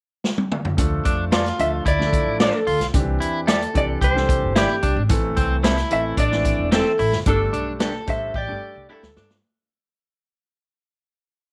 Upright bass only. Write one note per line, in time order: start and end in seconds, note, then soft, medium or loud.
0.78 1.00 D2 loud
1.06 1.49 F2 medium
1.59 1.81 D2 medium
1.86 2.19 D2 medium
2.26 2.48 A1 medium
2.67 2.78 D2 medium
2.80 2.91 B1 medium
2.94 3.16 C2 loud
3.20 3.64 E2 medium
3.75 3.97 C2 medium
4.01 4.45 C2 medium
4.43 4.65 G1 medium
4.83 4.94 C2 loud
4.96 5.07 G#1 loud
5.10 5.32 A1 loud
5.37 5.81 C2 medium
5.91 6.13 A1 medium
6.17 6.50 A1 medium
6.59 6.81 E1 medium
6.99 7.10 A1 loud
7.13 7.24 F#1 medium
7.26 7.48 G1 loud
7.53 7.97 B1 medium
8.07 8.29 A1 medium
8.34 8.45 A1 loud
8.48 8.59 G1 medium
8.75 8.86 C2 medium
9.02 9.13 D2 medium
9.16 9.38 G2 loud